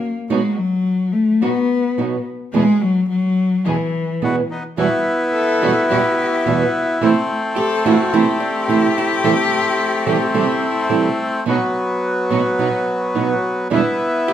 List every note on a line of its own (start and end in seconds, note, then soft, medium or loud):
0.00 0.16 A#3 medium
0.29 0.40 B2 medium
0.29 0.40 F#3 medium
0.29 0.58 G#3 medium
0.29 0.40 B3 medium
0.29 0.54 B3 medium
0.29 0.40 D#4 medium
0.29 0.55 D#4 medium
0.29 0.40 F#4 medium
0.29 0.55 F#4 medium
0.57 1.14 F#3 medium
1.13 1.43 A3 medium
1.41 1.51 B2 medium
1.41 1.51 F#3 medium
1.41 2.26 B3 medium
1.41 1.66 B3 medium
1.41 1.51 B3 medium
1.41 1.51 D#4 medium
1.41 1.66 D#4 medium
1.41 1.66 F#4 medium
1.41 1.52 F#4 medium
1.98 2.15 B2 medium
1.98 2.15 F#3 medium
1.98 2.15 B3 medium
1.98 2.22 B3 soft
1.98 2.15 D#4 medium
1.98 2.22 D#4 soft
1.98 2.16 F#4 medium
1.98 2.22 F#4 medium
2.53 2.63 E2 medium
2.53 2.63 B2 medium
2.53 2.63 E3 medium
2.53 2.83 G#3 medium
2.53 2.63 G#3 medium
2.53 2.78 B3 medium
2.53 2.63 B3 medium
2.53 2.78 E4 medium
2.53 2.63 E4 medium
2.53 2.78 G#4 medium
2.81 3.09 F#3 medium
3.10 3.68 F#3 medium
3.65 3.75 E2 medium
3.65 3.75 B2 medium
3.65 3.75 E3 medium
3.65 4.51 E3 medium
3.65 3.75 G#3 medium
3.65 3.89 B3 medium
3.65 3.75 B3 medium
3.65 3.89 E4 medium
3.65 3.75 E4 medium
3.65 3.90 G#4 medium
4.22 4.39 E2 medium
4.22 4.39 B2 medium
4.22 4.39 E3 medium
4.22 4.39 G#3 medium
4.22 4.39 B3 medium
4.22 4.46 B3 soft
4.22 4.36 B3 medium
4.22 4.40 E4 medium
4.22 4.46 E4 soft
4.22 4.36 F#4 loud
4.22 4.46 G#4 medium
4.51 4.64 B3 medium
4.51 4.63 D#4 medium
4.77 4.87 E2 medium
4.77 4.87 B2 medium
4.77 4.87 E3 medium
4.77 4.87 G3 medium
4.77 5.02 G3 medium
4.77 6.98 B3 medium
4.77 4.87 B3 medium
4.77 7.09 E4 loud
4.77 5.02 E4 medium
4.77 4.87 F#4 medium
4.77 5.02 F#4 medium
5.33 5.86 A4 loud
5.62 5.71 E2 medium
5.62 5.71 B2 medium
5.62 5.71 E3 medium
5.62 5.86 G3 medium
5.62 5.72 G3 medium
5.62 5.72 B3 loud
5.62 5.86 E4 medium
5.62 5.86 F#4 loud
5.62 5.72 F#4 loud
5.89 5.99 E2 medium
5.89 5.99 B2 medium
5.89 5.99 E3 medium
5.89 6.14 G3 medium
5.89 6.00 G3 medium
5.89 6.00 B3 loud
5.89 6.14 E4 medium
5.89 6.14 F#4 medium
5.89 6.00 F#4 loud
5.89 6.16 G4 loud
6.19 6.47 G4 medium
6.46 6.63 E2 medium
6.46 6.63 B2 medium
6.46 6.63 E3 medium
6.46 6.70 G3 medium
6.46 6.63 G3 medium
6.46 6.63 B3 medium
6.46 6.70 E4 soft
6.46 6.88 F#4 medium
6.46 6.70 F#4 medium
6.46 6.64 F#4 medium
7.01 7.11 C3 medium
7.01 7.11 E3 medium
7.01 7.25 A3 medium
7.01 7.11 A3 medium
7.01 11.45 A3 medium
7.01 7.25 C4 medium
7.01 7.11 C4 medium
7.01 11.44 C4 loud
7.01 7.26 E4 medium
7.01 7.11 E4 loud
7.56 7.83 G4 loud
7.56 7.88 A4 loud
7.85 7.94 C3 medium
7.85 7.95 E3 medium
7.85 8.09 A3 medium
7.85 7.95 A3 medium
7.85 7.95 C4 medium
7.85 8.09 C4 medium
7.85 7.95 E4 medium
7.85 8.09 E4 medium
7.85 8.15 F#4 loud
8.13 8.22 C3 medium
8.13 8.22 E3 medium
8.13 8.37 A3 medium
8.13 8.23 A3 medium
8.13 8.22 C4 loud
8.13 8.37 C4 medium
8.13 8.23 E4 loud
8.13 8.40 E4 loud
8.13 8.37 E4 medium
8.13 10.37 G4 loud
8.40 8.70 D4 medium
8.68 8.85 C3 medium
8.68 8.86 E3 medium
8.68 8.92 A3 soft
8.68 8.86 A3 medium
8.68 8.92 C4 soft
8.68 8.86 C4 medium
8.68 8.86 E4 medium
8.68 8.92 E4 medium
8.68 8.97 E4 medium
8.98 10.05 E4 medium
9.23 9.33 C3 medium
9.23 9.48 C3 medium
9.23 9.33 E3 medium
9.23 9.33 G3 medium
9.23 9.48 A3 medium
9.23 9.48 C4 medium
9.23 9.33 C4 loud
9.23 9.34 E4 loud
9.23 9.48 G4 medium
9.23 9.34 A4 loud
10.06 10.16 C3 loud
10.06 10.32 C3 medium
10.06 10.17 E3 medium
10.06 10.17 G3 loud
10.06 10.32 A3 medium
10.06 10.17 C4 loud
10.06 10.32 C4 medium
10.06 10.17 E4 medium
10.06 10.32 G4 medium
10.06 10.17 A4 medium
10.34 10.44 C3 medium
10.34 10.60 C3 medium
10.34 10.44 E3 medium
10.34 10.44 G3 loud
10.34 10.60 A3 medium
10.34 10.44 C4 medium
10.34 10.60 C4 medium
10.34 10.45 E4 medium
10.34 11.33 E4 medium
10.34 10.60 G4 medium
10.34 10.45 A4 loud
10.89 11.07 C3 medium
10.89 11.15 C3 soft
10.89 11.08 E3 medium
10.89 11.08 G3 medium
10.89 11.15 A3 medium
10.89 11.08 C4 medium
10.89 11.15 C4 soft
10.89 11.08 E4 medium
10.89 11.15 G4 medium
10.89 11.08 A4 medium
11.46 11.56 B2 medium
11.46 11.56 F#3 medium
11.46 13.68 F#3 medium
11.46 11.56 B3 medium
11.46 11.71 B3 medium
11.46 13.68 B3 loud
11.46 11.56 D#4 medium
11.46 11.71 D#4 medium
11.46 11.56 F#4 medium
11.46 11.71 F#4 medium
12.31 12.40 B2 medium
12.31 12.40 F#3 medium
12.31 12.55 B3 medium
12.31 12.40 B3 medium
12.31 12.55 D#4 medium
12.31 12.40 D#4 medium
12.31 12.55 F#4 medium
12.31 12.41 F#4 medium
12.59 12.68 B2 medium
12.59 12.68 F#3 medium
12.59 12.83 B3 medium
12.59 12.69 B3 medium
12.59 12.83 D#4 medium
12.59 12.68 D#4 medium
12.59 12.68 F#4 medium
12.59 12.83 F#4 medium
13.15 13.32 B2 medium
13.15 13.32 F#3 medium
13.15 13.39 B3 soft
13.15 13.33 B3 medium
13.15 13.33 D#4 medium
13.15 13.39 D#4 soft
13.15 13.33 F#4 medium
13.15 13.39 F#4 medium
13.70 13.80 E2 medium
13.70 13.80 B2 medium
13.70 13.80 D3 medium
13.70 13.80 G3 loud
13.70 13.96 G3 medium
13.70 13.80 B3 medium
13.70 14.33 B3 medium
13.70 13.96 D4 medium
13.70 13.81 E4 loud
13.70 14.33 E4 loud
13.70 13.96 E4 medium
14.28 14.33 F#4 medium
14.28 14.33 G4 loud